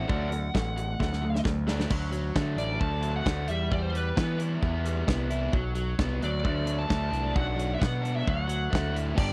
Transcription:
Already playing: lead electric guitar F#5
0.07 picked electric bass D2, overdriven electric guitar F#3 A3 D4, kick
0.30 overdriven electric guitar F#3 A3, closed hi-hat
0.54 picked electric bass A1, overdriven electric guitar F#3 A3, kick, snare
0.76 overdriven electric guitar F#3 A3, closed hi-hat
1.00 picked electric bass D2, overdriven electric guitar F#3 A3, kick, snare
1.13 snare
1.22 overdriven electric guitar F#3 A3
1.35 snare
1.44 picked electric bass D2, overdriven electric guitar F#3 A3, kick, snare
1.67 overdriven electric guitar F#3 A3 D4, snare
1.80 snare
1.90 picked electric bass D2, overdriven electric guitar F#3, kick, crash
2.12 overdriven electric guitar F#3, closed hi-hat
2.35 picked electric bass D3, overdriven electric guitar A3, kick, snare
2.56 picked electric bass A1, overdriven electric guitar D4, lead electric guitar D5, closed hi-hat
2.80 picked electric bass D2, overdriven electric guitar A3, lead electric guitar A5, kick
3.02 overdriven electric guitar F#3, closed hi-hat
3.16 lead electric guitar F#5
3.25 picked electric bass D2, overdriven electric guitar A3, kick, snare
3.48 picked electric bass E2, overdriven electric guitar G3, lead electric guitar E5, closed hi-hat
3.71 picked electric bass E2, overdriven electric guitar G3, lead electric guitar D5, kick
3.82 lead electric guitar C5
3.93 overdriven electric guitar G3, closed hi-hat
3.97 lead electric guitar B4
4.16 picked electric bass E3, overdriven electric guitar B3, kick, snare
4.38 overdriven electric guitar E4, closed hi-hat
4.62 picked electric bass E2, overdriven electric guitar B3, kick
4.85 overdriven electric guitar G3, closed hi-hat
5.07 picked electric bass C2, overdriven electric guitar B3, kick, snare
5.30 overdriven electric guitar E4, closed hi-hat
5.52 picked electric bass B1, overdriven electric guitar F#3, kick
5.75 overdriven electric guitar F#3, closed hi-hat
5.99 picked electric bass C2, overdriven electric guitar B3, kick, snare
6.22 picked electric bass D2, overdriven electric guitar F#3, lead electric guitar D5, closed hi-hat
6.43 picked electric bass D2, overdriven electric guitar A3, kick
6.65 overdriven electric guitar F#3, closed hi-hat
6.79 lead electric guitar A5
6.88 picked electric bass D2, overdriven electric guitar A3, kick, snare
7.10 picked electric bass C2, overdriven electric guitar D4, closed hi-hat
7.34 picked electric bass B1, overdriven electric guitar F#3, lead electric guitar F#5, kick
7.56 overdriven electric guitar F#3, closed hi-hat
7.75 lead electric guitar E5
7.79 picked electric bass B2, overdriven electric guitar B3, lead electric guitar F#5, kick, snare
8.02 overdriven electric guitar D4, closed hi-hat
8.16 lead electric guitar E5
8.25 picked electric bass D2, overdriven electric guitar F#3, lead electric guitar F#5, kick
8.48 overdriven electric guitar F#3, closed hi-hat
8.71 picked electric bass D2, overdriven electric guitar A3, kick
8.75 snare
8.94 overdriven electric guitar E4, closed hi-hat
9.15 picked electric bass G1, overdriven electric guitar B3 D4 G4, lead electric guitar D5, kick, crash

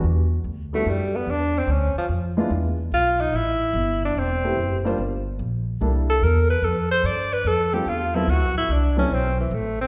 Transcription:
0.03 upright bass E2
0.44 upright bass D2
0.73 grand piano G3 B3 D4 E4 F#4, tenor saxophone A3
0.86 upright bass F#2, tenor saxophone G3
1.15 tenor saxophone B3
1.27 upright bass E2, tenor saxophone D4
1.58 tenor saxophone C4
1.67 upright bass D2, tenor saxophone C#4
1.95 tenor saxophone F3, muted upright bass stroke
2.09 upright bass F2
2.37 grand piano G#3 B3 D4 E4 F4
2.50 upright bass E2
2.92 upright bass B1, tenor saxophone F4
3.21 tenor saxophone D#4
3.33 upright bass A1, tenor saxophone E4
3.73 upright bass G1
4.05 tenor saxophone D4
4.15 upright bass E1, tenor saxophone C4
4.44 grand piano A3 B3 C4 E4 G4
4.57 upright bass F#1
4.84 grand piano G3 A#3 D4 F4 C5
4.98 upright bass G1
5.39 upright bass A#1
5.81 upright bass C2, grand piano G3 A#3 D4 E4 A4
6.10 tenor saxophone A4
6.22 upright bass E2, tenor saxophone A#4
6.50 tenor saxophone B4
6.62 upright bass F2, tenor saxophone A4
6.91 tenor saxophone C5
7.04 upright bass G2, tenor saxophone D5
7.33 tenor saxophone B4
7.44 upright bass F2, tenor saxophone A4
7.73 grand piano G3 C4 D4 F4 A4, tenor saxophone G4
7.86 upright bass E2, tenor saxophone F4
8.15 grand piano F#3 B3 C4 E4 A4, tenor saxophone E4
8.27 upright bass D2, tenor saxophone F#4
8.41 upright bass C2
8.55 upright bass A1, tenor saxophone E4
8.69 upright bass C2, tenor saxophone D4
8.96 grand piano F#3 B3 C4 E4 A4, tenor saxophone C#4
9.10 upright bass B1
9.14 tenor saxophone C4
9.40 tenor saxophone E3
9.51 upright bass A1, tenor saxophone A3
9.81 tenor saxophone C4

